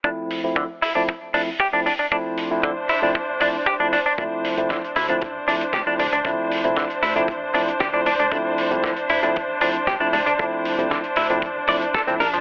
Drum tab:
HH |--o---o---o---o-|--o---o---o---o-|x-oxxxoxx-oxx-ox|x-oxxxoxx-oxx-ox|
SD |----------------|----------------|----o-------o---|----o-------o---|
BD |o---o---o---o---|o---o---o-o-o---|o---o---o---o---|o---o---o---o---|

HH |x-oxxxoxx-oxx-ox|x-oxxxoxx-oxxxox|
SD |----o-------o---|----o-------o---|
BD |o---o---o---o---|o---o---o---o---|